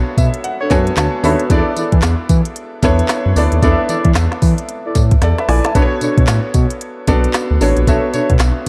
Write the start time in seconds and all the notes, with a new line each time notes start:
Already playing: B3 D4 F#4 A4 B4 C#5 E5
0.17 B2 E5, kick, closed hi-hat, tambourine
0.34 closed hi-hat
0.44 F#5, closed hi-hat
0.60 D4 A4 C#5
0.70 F#2 B3 D4 F#4 A4 C#5 G#5, kick, clap, closed hi-hat, tambourine
0.87 closed hi-hat
0.97 D2 A5, snare, clap, closed hi-hat, tambourine
1.23 D#2 B3 D4 F#4 A4 C#5 E5 B5, open hi-hat, tambourine
1.40 closed hi-hat
1.50 E2 B3 D4 E4 G#4 A4 D5, kick, closed hi-hat, tambourine
1.58 A4
1.76 E3 E4 A4 D5, closed hi-hat, tambourine
1.92 E3, kick, closed hi-hat
2.02 E2, snare, clap, closed hi-hat, tambourine
2.29 E3, kick, closed hi-hat, tambourine
2.45 closed hi-hat
2.56 closed hi-hat
2.83 E2 B3 D4 E4 A4 C#5, kick, clap, closed hi-hat, tambourine
2.99 closed hi-hat
3.09 snare, clap, closed hi-hat, tambourine
3.26 F#2
3.36 D2 B3 D4 E4 A4 D5, open hi-hat, tambourine
3.52 D#2, closed hi-hat
3.62 E2 B3 D4 E4 A4 D5, kick, closed hi-hat, tambourine
3.71 E5
3.89 E3 E4 A4 D5, closed hi-hat, tambourine
4.05 E3, kick, closed hi-hat
4.15 E2, snare, clap, closed hi-hat, tambourine
4.32 snare
4.42 E3, kick, open hi-hat, tambourine
4.58 closed hi-hat
4.69 closed hi-hat
4.85 E4 A4 D5
4.95 A2, kick, clap, closed hi-hat, tambourine
5.11 kick, closed hi-hat
5.22 E2 A4 D5, snare, clap, closed hi-hat
5.38 B4 E5, snare
5.48 A#1 E4 A4 D5 G#5, snare, open hi-hat
5.64 E5 A5, snare, closed hi-hat
5.75 B1 B3 D4 F#4 A4 B4 C#5, kick, closed hi-hat, tambourine
5.82 C#5
6.01 B2 D4 A4 C#5, closed hi-hat, tambourine
6.17 B2, kick, closed hi-hat
6.27 A2, snare, clap, closed hi-hat, tambourine
6.54 B2, kick, closed hi-hat, tambourine
6.70 closed hi-hat
6.81 closed hi-hat
7.07 B1 B3 D4 F#4 A4 D5, kick, clap, closed hi-hat, tambourine
7.24 closed hi-hat
7.34 snare, clap, closed hi-hat, tambourine
7.51 D2
7.61 A1 B3 D4 F#4 A4 C#5, open hi-hat, tambourine
7.77 A#1, closed hi-hat
7.87 B1 B3 D4 F#4 A4 C#5 E5, kick, closed hi-hat, tambourine
8.13 B2 D4 A4 C#5, closed hi-hat, tambourine
8.30 B2, kick, closed hi-hat
8.39 B1, snare, clap, closed hi-hat, tambourine